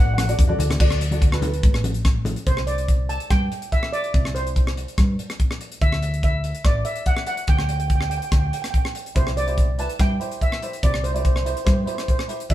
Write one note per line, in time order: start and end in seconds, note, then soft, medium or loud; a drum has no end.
0.00 0.32 A1 loud
0.00 0.11 F#4 medium
0.00 0.11 A4 medium
0.00 0.11 D5 medium
0.06 0.13 F#5 medium
0.14 0.19 F#5 medium
0.14 high conga medium
0.18 0.28 F#5 medium
0.18 cross-stick medium
0.18 closed hi-hat medium
0.27 0.40 F#4 medium
0.27 0.40 A4 medium
0.27 0.41 D5 medium
0.27 closed hi-hat medium
0.39 0.57 E2 medium
0.39 kick medium
0.39 closed hi-hat medium
0.39 high conga medium
0.47 0.67 F#4 medium
0.47 0.67 A4 medium
0.47 0.68 D5 medium
0.47 high conga medium
0.58 0.77 D2 medium
0.58 closed hi-hat medium
0.58 low conga medium
0.70 cross-stick medium
0.70 closed hi-hat medium
0.70 low conga medium
0.79 1.65 D2 medium
0.79 0.98 F#4 medium
0.79 0.99 A4 medium
0.79 0.99 D5 medium
0.79 kick loud
0.79 crash medium
0.91 cross-stick medium
1.01 closed hi-hat medium
1.11 1.24 F#4 medium
1.11 1.24 A4 medium
1.11 1.24 D5 medium
1.11 closed hi-hat medium
1.11 high conga medium
1.22 kick medium
1.22 closed hi-hat medium
1.32 1.82 F#4 medium
1.32 1.82 A4 medium
1.32 1.82 B4 medium
1.32 cross-stick medium
1.42 closed hi-hat medium
1.42 high conga medium
1.42 low conga medium
1.54 closed hi-hat medium
1.63 2.33 A1 medium
1.63 kick loud
1.63 closed hi-hat medium
1.74 cross-stick medium
1.84 closed hi-hat medium
1.84 high conga medium
1.94 closed hi-hat medium
2.05 kick medium
2.05 cross-stick medium
2.05 closed hi-hat medium
2.05 high conga medium
2.25 closed hi-hat medium
2.25 high conga medium
2.25 low conga medium
2.36 closed hi-hat medium
2.46 3.17 C2 medium
2.46 2.56 C5 medium
2.46 kick medium
2.46 closed hi-hat medium
2.57 cross-stick medium
2.67 3.06 D5 medium
2.67 closed hi-hat medium
2.78 closed hi-hat medium
2.88 kick medium
2.88 closed hi-hat medium
3.09 3.31 A5 medium
3.09 closed hi-hat medium
3.20 closed hi-hat medium
3.30 3.48 G2 medium
3.30 3.73 G5 medium
3.30 kick medium
3.30 cross-stick medium
3.30 closed hi-hat medium
3.52 closed hi-hat medium
3.62 closed hi-hat medium
3.72 3.94 E5 medium
3.72 kick medium
3.72 closed hi-hat soft
3.83 cross-stick medium
3.93 4.36 D5 medium
3.93 closed hi-hat medium
4.04 closed hi-hat medium
4.14 4.84 C2 medium
4.14 kick medium
4.14 closed hi-hat medium
4.25 cross-stick medium
4.35 5.56 C5 medium
4.35 closed hi-hat medium
4.47 closed hi-hat medium
4.56 kick medium
4.56 closed hi-hat medium
4.67 cross-stick medium
4.77 closed hi-hat medium
4.88 closed hi-hat medium
4.98 5.15 G2 medium
4.98 kick loud
4.98 cross-stick medium
4.98 closed hi-hat medium
5.19 closed hi-hat medium
5.30 cross-stick medium
5.30 closed hi-hat soft
5.40 kick medium
5.40 closed hi-hat soft
5.51 cross-stick medium
5.61 closed hi-hat medium
5.72 closed hi-hat soft
5.81 6.51 D2 medium
5.81 6.23 E5 medium
5.81 kick medium
5.81 closed hi-hat medium
5.92 cross-stick medium
6.02 closed hi-hat medium
6.14 closed hi-hat medium
6.23 6.66 E5 medium
6.23 kick medium
6.23 closed hi-hat medium
6.44 closed hi-hat medium
6.55 closed hi-hat medium
6.64 6.82 A1 medium
6.64 6.84 D5 medium
6.64 kick loud
6.64 cross-stick medium
6.64 closed hi-hat medium
6.85 6.94 E5 medium
6.85 closed hi-hat medium
6.96 closed hi-hat medium
7.06 7.26 F#5 medium
7.06 kick medium
7.06 closed hi-hat medium
7.17 cross-stick medium
7.26 7.47 F#5 medium
7.26 closed hi-hat medium
7.37 closed hi-hat medium
7.47 8.18 D2 medium
7.47 7.56 G5 medium
7.47 kick loud
7.47 closed hi-hat medium
7.57 7.63 G5 medium
7.57 cross-stick medium
7.64 7.70 G5 medium
7.69 7.79 G5 medium
7.69 closed hi-hat medium
7.80 7.86 G5 medium
7.80 closed hi-hat medium
7.88 7.94 G5 medium
7.88 kick medium
7.88 closed hi-hat medium
7.95 8.02 G5 medium
8.01 8.09 G5 medium
8.01 cross-stick medium
8.10 8.17 G5 medium
8.10 closed hi-hat medium
8.18 8.23 G5 soft
8.22 8.31 G5 medium
8.22 closed hi-hat medium
8.32 8.49 D2 medium
8.32 8.38 G5 soft
8.32 kick loud
8.32 cross-stick medium
8.32 closed hi-hat medium
8.40 8.46 G5 medium
8.47 8.53 G5 soft
8.53 8.61 G5 medium
8.53 closed hi-hat medium
8.62 8.69 G5 medium
8.62 cross-stick medium
8.62 closed hi-hat soft
8.71 8.76 G5 medium
8.71 kick medium
8.71 closed hi-hat soft
8.78 8.85 G5 medium
8.85 cross-stick medium
8.95 closed hi-hat medium
9.06 closed hi-hat soft
9.15 9.86 C2 medium
9.15 9.34 E4 medium
9.15 9.34 G4 medium
9.15 9.37 C5 medium
9.15 9.35 C5 medium
9.15 kick loud
9.15 closed hi-hat medium
9.27 cross-stick medium
9.37 9.76 D5 medium
9.37 closed hi-hat medium
9.46 9.65 E4 medium
9.46 9.66 G4 medium
9.46 9.66 C5 medium
9.46 closed hi-hat medium
9.58 kick medium
9.58 closed hi-hat medium
9.78 9.91 E4 medium
9.78 9.91 G4 medium
9.78 9.92 B4 medium
9.78 10.00 A5 medium
9.78 closed hi-hat medium
9.89 closed hi-hat medium
9.99 10.17 G2 medium
9.99 10.12 E4 medium
9.99 10.12 G4 medium
9.99 10.13 C5 medium
9.99 10.43 G5 medium
9.99 kick loud
9.99 cross-stick medium
9.99 closed hi-hat medium
10.20 10.45 E4 medium
10.20 10.45 G4 medium
10.20 10.45 C5 medium
10.20 closed hi-hat medium
10.31 closed hi-hat medium
10.41 10.85 E5 medium
10.41 kick medium
10.41 closed hi-hat medium
10.52 cross-stick medium
10.62 10.75 E4 soft
10.62 10.75 G4 medium
10.62 10.75 C5 medium
10.62 closed hi-hat medium
10.73 closed hi-hat medium
10.82 11.53 C2 medium
10.82 11.01 E4 medium
10.82 11.02 G4 medium
10.82 11.02 C5 medium
10.82 11.05 D5 medium
10.82 kick medium
10.82 closed hi-hat medium
10.94 cross-stick medium
11.04 11.11 C5 medium
11.04 closed hi-hat medium
11.13 11.33 E4 medium
11.13 11.33 G4 medium
11.13 11.19 C5 soft
11.13 11.33 D5 medium
11.13 closed hi-hat medium
11.20 11.26 C5 medium
11.25 11.34 C5 soft
11.25 kick medium
11.25 closed hi-hat medium
11.35 11.41 C5 medium
11.35 cross-stick medium
11.43 11.58 E4 medium
11.43 11.58 G4 medium
11.43 11.49 C5 soft
11.43 11.58 C5 medium
11.43 closed hi-hat medium
11.50 11.57 C5 soft
11.57 11.64 C5 soft
11.57 closed hi-hat medium
11.65 11.84 G2 medium
11.65 11.78 E4 medium
11.65 11.79 G4 medium
11.65 11.71 C5 soft
11.65 11.79 C5 medium
11.65 kick loud
11.65 cross-stick medium
11.65 closed hi-hat medium
11.72 11.79 C5 soft
11.80 11.86 C5 soft
11.86 12.12 E4 medium
11.86 12.12 G4 medium
11.86 12.12 C5 medium
11.86 11.94 C5 soft
11.86 closed hi-hat medium
11.95 12.02 C5 medium
11.95 cross-stick medium
11.95 closed hi-hat medium
12.03 12.09 C5 soft
12.08 12.17 C5 medium
12.08 kick medium
12.08 closed hi-hat soft
12.19 cross-stick medium
12.28 12.41 E4 medium
12.28 12.42 G4 medium
12.28 12.42 C5 medium
12.28 closed hi-hat medium
12.40 closed hi-hat soft
12.49 12.54 D2 medium
12.49 12.54 F#4 medium
12.49 12.54 A4 medium
12.49 12.54 D5 medium
12.49 12.54 E5 medium
12.49 kick medium
12.49 closed hi-hat medium